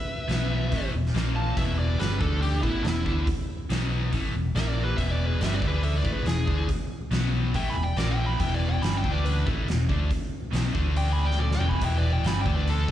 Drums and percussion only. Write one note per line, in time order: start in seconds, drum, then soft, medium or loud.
0.29 snare loud
0.29 open hi-hat soft
0.72 kick medium
0.72 open hi-hat soft
1.06 snare soft
1.15 snare medium
1.15 open hi-hat soft
1.57 kick loud
1.57 open hi-hat soft
2.00 snare loud
2.00 open hi-hat soft
2.21 kick loud
2.42 open hi-hat soft
2.63 kick loud
2.85 snare medium
2.85 open hi-hat soft
3.06 kick loud
3.27 kick loud
3.27 open hi-hat medium
3.70 snare loud
3.70 open hi-hat soft
4.13 kick medium
4.13 open hi-hat soft
4.56 snare medium
4.56 open hi-hat soft
4.98 kick loud
4.98 open hi-hat soft
5.41 snare loud
5.41 open hi-hat soft
5.62 kick medium
5.83 open hi-hat soft
6.05 kick loud
6.26 snare medium
6.26 open hi-hat soft
6.48 kick loud
6.69 kick loud
6.69 open hi-hat soft
7.12 snare loud
7.12 open hi-hat soft
7.54 kick medium
7.54 open hi-hat soft
7.97 snare medium
7.97 open hi-hat soft
8.40 kick loud
8.40 open hi-hat medium
8.83 snare loud
8.83 open hi-hat soft
9.04 kick loud
9.25 open hi-hat soft
9.47 kick loud
9.68 snare medium
9.68 open hi-hat soft
9.89 kick loud
10.11 kick loud
10.11 open hi-hat soft
10.53 snare loud
10.53 open hi-hat medium
10.75 kick loud
10.96 open hi-hat medium
11.31 snare soft
11.39 high tom soft
11.51 snare medium
11.61 mid tom medium
11.71 kick medium
11.81 kick loud
11.81 open hi-hat medium
12.24 snare loud
12.24 open hi-hat soft
12.46 kick loud
12.67 open hi-hat soft